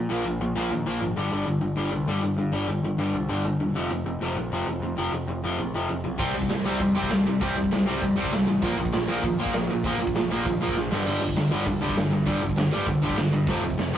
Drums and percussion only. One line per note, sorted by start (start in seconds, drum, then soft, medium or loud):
6.19 kick loud
6.19 crash loud
6.34 open hi-hat medium
6.42 kick medium
6.49 snare loud
6.49 open hi-hat medium
6.65 open hi-hat medium
6.80 kick loud
6.80 open hi-hat medium
6.95 open hi-hat medium
7.03 kick medium
7.10 snare loud
7.10 open hi-hat medium
7.25 open hi-hat medium
7.41 kick loud
7.41 open hi-hat medium
7.56 open hi-hat medium
7.64 kick medium
7.72 snare loud
7.72 open hi-hat medium
7.87 open hi-hat medium
8.02 kick loud
8.02 open hi-hat medium
8.17 open hi-hat medium
8.25 kick medium
8.32 snare loud
8.32 open hi-hat medium
8.47 open hi-hat medium
8.62 kick loud
8.62 open hi-hat medium
8.77 open hi-hat medium
8.85 kick medium
8.93 snare loud
8.93 open hi-hat medium
9.08 open hi-hat medium
9.23 kick loud
9.23 open hi-hat medium
9.38 open hi-hat medium
9.46 kick medium
9.53 snare loud
9.53 open hi-hat medium
9.69 open hi-hat medium
9.84 kick loud
9.84 open hi-hat medium
10.00 open hi-hat medium
10.07 kick medium
10.15 snare loud
10.15 open hi-hat medium
10.30 open hi-hat medium
10.45 kick loud
10.45 open hi-hat medium
10.61 open hi-hat medium
10.68 kick medium
10.77 snare medium
10.92 snare medium
11.06 crash loud
11.21 open hi-hat medium
11.29 kick medium
11.36 snare loud
11.36 open hi-hat medium
11.52 open hi-hat medium
11.66 kick loud
11.66 open hi-hat medium
11.82 open hi-hat medium
11.89 kick loud
11.96 snare loud
11.96 open hi-hat medium
12.12 open hi-hat medium
12.27 kick loud
12.27 open hi-hat medium
12.42 open hi-hat medium
12.49 kick medium
12.57 snare loud
12.57 open hi-hat medium
12.71 open hi-hat medium
12.86 kick loud
12.86 open hi-hat medium
13.02 open hi-hat medium
13.09 kick medium
13.17 snare loud
13.17 open hi-hat medium
13.32 open hi-hat medium
13.47 kick loud
13.47 open hi-hat medium
13.63 open hi-hat medium
13.70 kick medium
13.78 snare loud
13.78 open hi-hat medium
13.93 open hi-hat medium